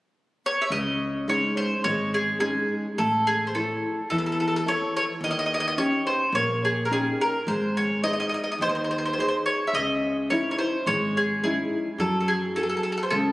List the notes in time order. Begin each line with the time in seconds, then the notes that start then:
0.46 C#5
0.62 E5
0.70 C#2 C#3 D#5
1.28 G#3 C#4 D#4 C#5
1.57 C5
1.84 G#1 G#3 C#5
2.14 G#4
2.40 G#3 C#4 D#4 G#4
2.98 A1 A3 A4
3.27 G#4
3.47 C5
3.55 E4 A4 C#5
4.10 E2 E3 A4
4.18 A4
4.26 A4
4.32 A4
4.40 A4
4.48 A4
4.56 A4
4.66 E4 A4 C#5
4.97 C#5
5.21 D#2 D#3 D#5
5.31 D#5
5.39 D#5
5.46 D#5
5.54 D#5
5.60 D#5
5.68 D#5
5.77 C#4 D#4 G4 C#5
6.07 C5
6.32 A#1 A#3 C#5
6.65 G#4
6.85 A#4
6.91 C#4 D#4 G4 G#4
7.21 A#4
7.47 G#1 G#3 C5
7.77 C#5
8.04 D#4 G#4 C5 D#5
8.13 D#5
8.20 D#5
8.29 D#5
8.34 D#5
8.44 D#5
8.52 D#5
8.58 D#2 D#3 C5
8.69 C5
8.75 C5
8.84 C5
8.91 C5
8.98 C5
9.06 C5
9.13 C5
9.18 D#4 G#4 C5
9.28 C5
9.46 C#5
9.67 E5
9.73 C#2 C#3 D#5
10.30 C#4 D#4 E4 C#5
10.51 C#5
10.59 C5
10.86 G#1 G#3 C#5
11.17 G#4
11.43 C#4 D#4 E4 G#4
11.98 F#2 F#3 A4
12.20 A4
12.28 G#4
12.56 F#4 G#4 A4
12.63 A4
12.69 A4
12.77 A4
12.83 A4
12.92 A4
12.98 A4
13.03 C5
13.10 C#2 C#3 A4